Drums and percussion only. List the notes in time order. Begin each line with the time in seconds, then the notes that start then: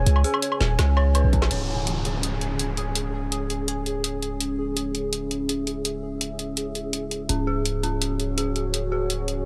0.06 closed hi-hat
0.16 low woodblock
0.24 open hi-hat
0.34 low woodblock
0.42 closed hi-hat
0.52 low woodblock
0.61 snare, open hi-hat
0.79 snare, closed hi-hat, low woodblock
0.97 low woodblock
1.15 closed hi-hat, low woodblock
1.33 kick, closed hi-hat
1.42 snare, low woodblock
1.51 closed hi-hat
1.87 closed hi-hat
2.05 closed hi-hat
2.23 closed hi-hat
2.41 closed hi-hat
2.59 closed hi-hat
2.77 closed hi-hat
2.95 closed hi-hat
3.32 closed hi-hat
3.50 closed hi-hat
3.68 closed hi-hat
3.86 closed hi-hat
4.04 closed hi-hat
4.22 closed hi-hat
4.41 closed hi-hat
4.77 closed hi-hat
4.95 closed hi-hat
5.13 closed hi-hat
5.31 closed hi-hat
5.49 closed hi-hat
5.67 closed hi-hat
5.85 closed hi-hat
6.21 closed hi-hat
6.39 closed hi-hat
6.57 closed hi-hat
6.75 closed hi-hat
6.93 closed hi-hat
7.11 closed hi-hat
7.29 closed hi-hat
7.65 closed hi-hat
7.83 closed hi-hat
8.02 closed hi-hat
8.20 closed hi-hat
8.38 closed hi-hat
8.56 closed hi-hat
8.74 closed hi-hat
9.10 closed hi-hat
9.28 closed hi-hat